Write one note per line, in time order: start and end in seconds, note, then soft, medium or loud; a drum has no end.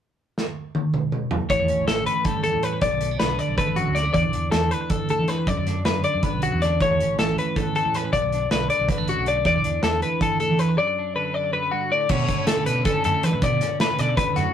0.38 snare medium
0.75 high tom medium
0.94 mid tom medium
1.12 mid tom medium
1.31 floor tom medium
1.50 1.59 A1 medium
1.50 2.45 A2 medium
1.50 1.87 C#5 medium
1.50 kick loud
1.50 closed hi-hat medium
1.60 1.69 E2 medium
1.68 1.86 A1 medium
1.68 2.62 C#4 soft
1.68 closed hi-hat medium
1.88 2.05 A1 medium
1.88 2.80 E3 medium
1.88 2.06 A4 medium
1.88 snare loud
1.88 closed hi-hat medium
2.06 2.25 B4 medium
2.06 closed hi-hat medium
2.25 2.81 G3 soft
2.25 2.42 A4 medium
2.25 kick loud
2.25 closed hi-hat medium
2.44 2.80 E2 medium
2.44 2.63 A4 medium
2.44 closed hi-hat soft
2.54 2.80 A2 medium
2.63 2.80 C#4 medium
2.63 2.81 B4 medium
2.63 closed hi-hat medium
2.81 2.91 B1 loud
2.81 3.20 B2 medium
2.81 3.19 D5 medium
2.81 kick medium
2.81 closed hi-hat medium
2.92 3.18 B1 medium
3.01 3.11 A3 soft
3.01 closed hi-hat medium
3.11 3.95 B3 soft
3.20 3.38 B1 medium
3.20 4.52 D3 medium
3.20 3.39 B4 medium
3.20 snare medium
3.20 closed hi-hat medium
3.39 3.57 D5 medium
3.39 closed hi-hat soft
3.49 3.57 B1 medium
3.58 3.94 A3 soft
3.58 3.77 B4 medium
3.58 kick loud
3.58 closed hi-hat medium
3.68 3.85 A1 medium
3.76 4.12 F#2 medium
3.76 3.96 F#4 medium
3.76 closed hi-hat soft
3.87 4.13 D2 medium
3.95 4.04 A3 medium
3.95 4.12 D5 medium
3.95 snare soft
3.95 closed hi-hat medium
4.04 4.14 B3 soft
4.13 5.08 E2 medium
4.13 4.23 E2 loud
4.13 4.51 D5 medium
4.13 kick medium
4.13 closed hi-hat medium
4.24 4.33 B1 medium
4.33 4.52 E2 medium
4.33 5.45 D4 soft
4.33 closed hi-hat soft
4.51 4.70 E2 medium
4.51 5.45 E3 medium
4.51 4.71 A4 medium
4.51 snare loud
4.51 closed hi-hat medium
4.71 4.90 B4 medium
4.71 closed hi-hat medium
4.90 5.09 A4 medium
4.90 kick loud
4.90 closed hi-hat medium
5.08 5.28 D2 medium
5.08 5.28 A4 medium
5.08 closed hi-hat soft
5.19 5.45 E3 medium
5.28 5.47 E2 medium
5.28 5.48 B4 medium
5.28 snare soft
5.28 closed hi-hat medium
5.47 5.56 F#2 medium
5.47 6.42 F#2 medium
5.47 5.85 D5 medium
5.47 kick medium
5.47 closed hi-hat medium
5.58 5.84 F#2 medium
5.67 6.61 D4 soft
5.67 snare soft
5.67 closed hi-hat medium
5.85 6.03 F#2 medium
5.85 6.79 D3 medium
5.85 6.04 B4 medium
5.85 snare loud
5.85 closed hi-hat medium
6.04 6.23 D5 medium
6.04 closed hi-hat soft
6.14 6.23 F#2 medium
6.23 6.84 B3 medium
6.23 6.42 B4 medium
6.23 kick medium
6.23 closed hi-hat medium
6.33 6.50 B1 medium
6.42 6.78 F#2 medium
6.42 6.61 F#4 medium
6.42 closed hi-hat medium
6.52 6.78 E2 medium
6.62 6.79 D4 soft
6.62 6.80 D5 medium
6.62 snare soft
6.62 closed hi-hat soft
6.81 6.89 A1 medium
6.81 7.75 A2 medium
6.81 7.19 C#5 medium
6.81 kick loud
6.81 closed hi-hat medium
6.90 6.98 E2 medium
7.00 7.17 A1 medium
7.00 7.95 C#4 soft
7.00 closed hi-hat medium
7.18 7.36 A1 medium
7.18 8.11 E3 medium
7.18 7.37 A4 medium
7.18 snare loud
7.18 closed hi-hat medium
7.38 7.57 B4 medium
7.38 closed hi-hat soft
7.56 8.89 B3 medium
7.56 7.75 A4 medium
7.56 kick medium
7.56 closed hi-hat medium
7.75 8.11 E2 medium
7.75 7.95 A4 medium
7.75 closed hi-hat soft
7.85 8.11 A2 medium
7.94 8.11 C#4 medium
7.94 8.12 B4 medium
7.94 snare soft
7.94 closed hi-hat medium
8.13 8.21 B1 loud
8.13 8.51 B2 medium
8.13 8.50 D5 medium
8.13 kick medium
8.13 closed hi-hat medium
8.22 8.48 B1 medium
8.32 9.27 D4 soft
8.32 closed hi-hat medium
8.51 8.68 B1 medium
8.51 9.82 D3 medium
8.51 8.70 B4 medium
8.51 snare loud
8.51 closed hi-hat medium
8.70 8.89 D5 medium
8.70 closed hi-hat soft
8.80 8.88 B1 medium
8.89 8.98 F#3 soft
8.89 9.08 B4 medium
8.89 kick medium
8.89 closed hi-hat medium
8.98 9.16 A1 medium
8.98 9.45 A3 soft
9.08 9.43 F#2 medium
9.08 9.27 F#4 medium
9.08 closed hi-hat soft
9.17 9.43 B1 medium
9.26 9.48 D4 soft
9.26 9.45 D5 medium
9.26 closed hi-hat medium
9.45 10.39 E2 medium
9.45 9.54 E2 loud
9.45 9.83 D5 medium
9.45 kick medium
9.45 closed hi-hat medium
9.56 9.64 B1 medium
9.64 9.82 E2 medium
9.64 10.98 D4 soft
9.64 closed hi-hat medium
9.82 10.00 E2 medium
9.82 10.75 E3 medium
9.82 10.02 A4 medium
9.82 snare loud
9.82 closed hi-hat medium
10.02 10.21 B4 medium
10.02 closed hi-hat medium
10.21 10.39 A4 medium
10.21 kick loud
10.21 closed hi-hat medium
10.40 10.58 D2 medium
10.40 10.59 A4 medium
10.40 closed hi-hat soft
10.50 10.76 E3 medium
10.59 10.78 E2 medium
10.59 10.78 B4 medium
10.59 closed hi-hat medium
10.78 11.53 F#2 medium
10.78 11.15 D5 medium
10.99 12.09 D4 soft
11.16 12.09 D3 medium
11.16 11.34 B4 medium
11.34 11.53 D5 medium
11.53 11.72 F#2 medium
11.53 11.72 B4 medium
11.71 11.91 G2 medium
11.71 11.91 F#4 medium
11.91 12.09 A2 medium
11.91 12.10 D5 medium
12.09 12.66 B2 medium
12.09 12.27 B2 loud
12.09 12.67 D3 medium
12.09 13.05 A3 medium
12.09 12.30 C#4 medium
12.09 12.48 D4 medium
12.09 12.47 C#5 medium
12.09 kick loud
12.09 crash loud
12.29 12.87 C#4 soft
12.29 kick medium
12.29 closed hi-hat medium
12.47 13.40 E4 medium
12.47 12.66 A4 medium
12.47 snare loud
12.47 closed hi-hat loud
12.66 12.84 B2 medium
12.66 13.98 D3 medium
12.66 12.85 B4 medium
12.66 closed hi-hat medium
12.85 13.45 C#4 medium
12.85 13.04 A4 medium
12.85 kick loud
12.85 closed hi-hat medium
13.04 13.13 F#2 medium
13.04 13.41 A3 medium
13.04 13.24 A4 medium
13.04 closed hi-hat medium
13.23 13.40 F#2 medium
13.23 13.32 E3 medium
13.23 13.44 B4 medium
13.23 snare soft
13.23 closed hi-hat medium
13.32 13.41 A2 medium
13.42 13.60 B2 loud
13.42 13.99 B2 medium
13.42 13.81 D5 medium
13.42 kick loud
13.42 closed hi-hat medium
13.61 14.54 C#4 medium
13.61 snare soft
13.61 closed hi-hat medium
13.80 13.90 D4 medium
13.80 13.99 B4 medium
13.80 snare loud
13.80 closed hi-hat medium
13.90 14.54 E4 soft
13.99 14.16 B2 medium
13.99 14.54 D3 medium
13.99 14.17 D5 medium
13.99 snare soft
13.99 closed hi-hat medium
14.17 14.37 B2 medium
14.17 14.36 B4 medium
14.17 kick loud
14.17 closed hi-hat medium
14.36 14.45 F#2 medium
14.36 14.54 A2 medium
14.36 14.54 F#4 medium
14.36 snare soft
14.36 closed hi-hat medium